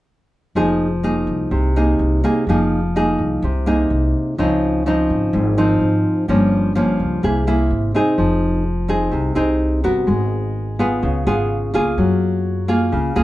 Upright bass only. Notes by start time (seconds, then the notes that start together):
0.55 F1
1.27 C2
1.51 C2
1.99 C2
2.47 F1
3.19 C2
3.42 C2
3.90 C2
4.39 C#2
5.10 G#1
5.33 G#1
5.81 G#1
6.28 G1
7.00 C#2
7.23 C2
7.70 G#1
8.18 F1
9.13 C2
9.36 C2
9.84 G1
10.08 G#1
11.03 C#2
11.27 G#1
11.74 C#2
11.98 F#2
12.93 C#2
13.16 C#2